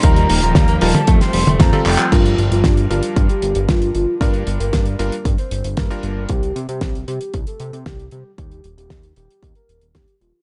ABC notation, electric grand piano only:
X:1
M:4/4
L:1/16
Q:1/4=115
K:Gm
V:1 name="Electric grand piano"
[G,EFB]6 [G,EFB] z6 [G,CFA]3 | [G,DFB]6 [G,DFB]8- [G,DFB]2 | [G,DFB]6 [G,DFB] z6 [G,DFB]3 | z16 |
z16 |]